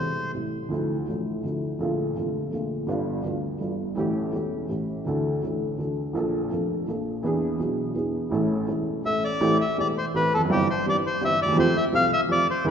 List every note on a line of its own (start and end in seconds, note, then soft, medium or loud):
0.00 0.32 E1 soft
0.00 0.32 E2 soft
0.00 0.31 C3 soft
0.00 0.32 G3 soft
0.00 0.33 A3 soft
0.00 0.33 E4 soft
0.00 0.32 C5 medium
0.32 0.69 A1 soft
0.32 0.70 A2 soft
0.32 0.68 C3 soft
0.32 0.69 G3 soft
0.32 0.70 A3 soft
0.32 0.70 E4 soft
0.69 1.06 D2 medium
0.69 1.05 D3 medium
0.69 1.06 F3 soft
0.69 1.06 A3 soft
0.73 1.07 E4 medium
1.06 1.43 A1 soft
1.06 1.43 A2 soft
1.06 1.42 D3 soft
1.06 1.43 F3 soft
1.06 1.43 A3 soft
1.10 1.44 E4 soft
1.43 1.79 D2 soft
1.43 1.77 D3 soft
1.43 1.79 F3 soft
1.43 1.79 A3 soft
1.43 1.80 E4 soft
1.79 2.15 A#1 medium
1.79 2.15 A#2 medium
1.79 2.14 D3 medium
1.79 2.15 A3 medium
1.79 2.16 A#3 soft
1.79 2.16 F4 medium
2.15 2.51 F1 soft
2.15 2.51 F2 soft
2.15 2.49 D3 soft
2.15 2.51 A3 soft
2.15 2.51 A#3 soft
2.19 2.52 F4 soft
2.51 2.87 A#1 soft
2.51 2.87 A#2 soft
2.51 2.85 D3 soft
2.51 2.87 A3 soft
2.51 2.87 A#3 soft
2.51 2.88 F4 soft
2.87 3.23 G1 medium
2.87 3.23 G2 medium
2.87 3.21 D3 medium
2.87 3.22 G3 medium
2.87 3.23 B3 medium
2.87 3.24 F4 medium
3.23 3.59 D2 soft
3.23 3.57 D3 soft
3.23 3.58 G3 soft
3.23 3.59 B3 soft
3.23 3.60 F4 soft
3.59 3.95 G1 soft
3.59 3.95 G2 soft
3.59 3.94 D3 soft
3.59 3.95 G3 soft
3.59 3.95 B3 soft
3.63 3.96 F4 soft
3.95 4.31 A1 medium
3.95 4.31 A2 medium
3.95 4.30 E3 medium
3.95 4.31 A3 medium
3.95 4.31 C#4 soft
3.99 4.32 G4 medium
4.31 4.67 E1 soft
4.31 4.67 E2 soft
4.31 4.65 E3 soft
4.31 4.67 A3 soft
4.31 4.68 C#4 soft
4.31 4.68 G4 soft
4.67 5.04 A1 soft
4.67 5.04 A2 soft
4.67 5.03 E3 soft
4.67 5.04 A3 soft
4.67 5.04 C#4 soft
4.67 5.05 G4 soft
5.04 5.41 D2 medium
5.04 5.41 D3 medium
5.04 5.40 E3 medium
5.04 5.41 A3 medium
5.04 5.41 D4 soft
5.09 5.42 A4 medium
5.41 5.77 A1 soft
5.41 5.77 A2 soft
5.41 5.75 E3 soft
5.41 5.77 A3 soft
5.41 5.78 D4 soft
5.45 5.78 A4 soft
5.76 6.13 D2 soft
5.76 6.13 D3 soft
5.76 6.12 E3 soft
5.76 6.13 A3 soft
5.76 6.14 D4 soft
5.81 6.14 A4 soft
6.13 6.50 A#1 medium
6.13 6.50 A#2 medium
6.13 6.48 F3 medium
6.13 6.50 A#3 soft
6.13 6.50 D4 soft
6.17 6.51 A4 medium
6.50 6.86 F1 soft
6.50 6.86 F2 soft
6.50 6.85 F3 soft
6.50 6.86 A#3 soft
6.50 6.87 D4 soft
6.54 6.87 A4 soft
6.87 7.22 A#1 soft
6.87 7.22 A#2 soft
6.87 7.21 F3 soft
6.87 7.22 A#3 soft
6.87 7.23 D4 soft
6.87 7.23 A4 soft
7.23 7.58 E2 medium
7.23 7.56 E3 medium
7.23 7.58 B3 medium
7.23 7.58 D4 medium
7.23 7.59 G#4 medium
7.58 7.94 B1 soft
7.58 7.94 B2 soft
7.58 7.92 E3 soft
7.58 7.93 B3 soft
7.58 7.94 D4 soft
7.62 7.95 G#4 soft
7.95 8.30 E2 soft
7.95 8.28 E3 soft
7.95 8.29 B3 soft
7.95 8.30 D4 soft
7.95 8.31 G#4 soft
8.29 8.66 A1 medium
8.29 8.66 A2 medium
8.29 8.65 E3 medium
8.29 8.65 A3 medium
8.29 8.66 C#4 medium
8.34 8.67 A4 medium
8.66 9.03 E1 soft
8.66 9.03 E2 soft
8.66 9.00 E3 soft
8.66 9.02 A3 soft
8.66 9.03 C#4 soft
8.71 9.04 A4 soft
9.02 9.39 A1 soft
9.02 9.39 A2 soft
9.02 9.38 E3 soft
9.02 9.39 A3 soft
9.02 9.39 C#4 soft
9.02 9.24 E5 loud
9.06 9.40 A4 soft
9.24 9.58 D5 loud
9.41 9.56 A1 medium
9.41 9.56 A2 medium
9.41 9.56 E3 medium
9.41 9.56 A3 medium
9.41 9.56 C4 medium
9.41 9.57 G4 medium
9.61 9.77 E5 medium
9.78 9.93 E1 medium
9.78 9.93 E2 medium
9.78 9.93 E3 soft
9.78 9.93 A3 soft
9.78 9.93 C4 soft
9.78 9.93 G4 medium
9.78 9.88 D5 loud
9.98 10.06 C5 loud
10.14 10.29 A1 medium
10.14 10.29 A2 medium
10.14 10.29 E3 soft
10.14 10.29 A3 soft
10.14 10.29 C4 soft
10.14 10.29 G4 soft
10.14 10.33 B4 medium
10.34 10.41 E2 medium
10.34 10.42 A4 medium
10.40 10.45 F2 medium
10.45 10.50 F#2 medium
10.50 10.65 G1 medium
10.50 10.65 G2 medium
10.50 10.65 E3 medium
10.50 10.65 G3 medium
10.50 10.65 C4 medium
10.50 10.65 G4 medium
10.50 10.68 G4 loud
10.70 10.86 C5 medium
10.86 11.02 G1 medium
10.86 11.01 G2 medium
10.86 11.01 E3 soft
10.86 11.02 G3 soft
10.86 11.02 C4 soft
10.86 11.02 G4 medium
10.86 10.97 D5 loud
11.06 11.24 C5 medium
11.21 11.37 G1 medium
11.21 11.37 G2 medium
11.21 11.37 E3 soft
11.21 11.37 G3 soft
11.21 11.37 C4 soft
11.21 11.37 G4 medium
11.21 11.40 E5 loud
11.42 11.49 D2 medium
11.42 11.58 D5 loud
11.48 11.53 D#2 medium
11.52 11.57 E2 medium
11.52 11.72 F2 medium
11.57 11.72 F3 medium
11.57 11.72 A3 medium
11.57 11.72 C4 medium
11.57 11.72 G4 medium
11.57 11.77 C5 loud
11.77 11.85 E5 loud
11.93 12.08 C2 medium
11.93 12.08 C3 medium
11.93 12.08 F3 medium
11.93 12.08 A3 soft
11.93 12.08 C4 soft
11.93 12.08 G4 medium
11.93 12.11 F5 loud
12.13 12.21 E5 loud
12.29 12.45 F2 medium
12.29 12.45 F3 medium
12.29 12.44 A3 soft
12.29 12.44 C4 soft
12.29 12.45 G4 medium
12.29 12.47 D5 loud
12.51 12.66 C5 medium
12.64 12.71 E2 medium
12.64 12.71 D3 medium
12.64 12.71 E3 medium
12.64 12.71 G#3 medium
12.64 12.71 B3 medium
12.64 12.71 E4 medium